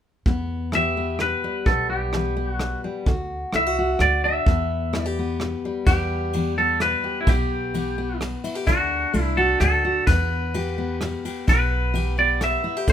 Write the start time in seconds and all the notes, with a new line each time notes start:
0.26 E2 B3, kick
0.72 E3 G4 E5, cross-stick
0.97 B3
1.19 B2 B4, cross-stick
1.44 G3
1.66 B1 E2 B3 A4, kick
1.90 G4
2.13 E3 B3, cross-stick
2.37 B3
2.50 F#4
2.59 B2, cross-stick
2.84 G3
3.06 D2 D3 F#4, kick
3.53 C2 A3 E4 E5, cross-stick
3.67 F#4
3.79 F#4
3.99 D2 A2 D5, cross-stick
4.24 D4 E5
4.46 E2 B3, kick
4.93 E3 E4, cross-stick
5.01 D5
5.06 G4
5.19 B3
5.40 B2, cross-stick
5.65 G3
5.86 E2 B3 G4, kick, ride
6.33 E3 B3, ride
6.58 B3 A4
6.80 B2 B4, cross-stick, ride
7.04 G4
7.21 E4
7.27 B1 E2 B3 G4, kick, ride
7.74 E3 B3, ride
7.98 B3
8.21 B2, cross-stick, ride
8.44 E4, ride
8.55 G4
8.66 D2 D3 D4 F#4, kick, ride
9.13 C2 A3 D4, ride
9.21 E4
9.37 F#4 A4
9.60 D2 A2 A4, cross-stick, ride
9.85 F#4
10.07 E2 B3 B4, kick, ride
10.54 E3 G4, ride
10.78 B3
11.01 B2, cross-stick, ride
11.25 G4, ride
11.47 B1 E2 B3 B4, kick, ride
11.94 E3 G4, ride
12.18 B3 D5
12.41 B2 E5, cross-stick, ride
12.64 E4
12.77 G4
12.88 D2 D3 A3 D4, kick, ride